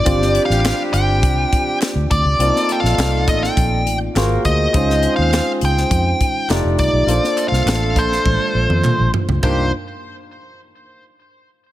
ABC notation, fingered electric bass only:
X:1
M:4/4
L:1/16
Q:1/4=102
K:Cdor
V:1 name="Fingered electric bass" clef=bass
G,,,3 A,,,2 z G,,,2 C,,2 z3 D,, D,, _D,, | C,, z2 B,,, C,,2 A,,,2 B,,,2 A,,,2 _A,,,2 D,,2 | _D,,3 E,,2 z D,,2 F,,2 z2 F,,, F,,, C,, =B,,, | B,,, z2 C,, A,,,2 B,,,2 A,,, z B,,, F,, B,, B,,, z _D,, |
C,,2 z12 z2 |]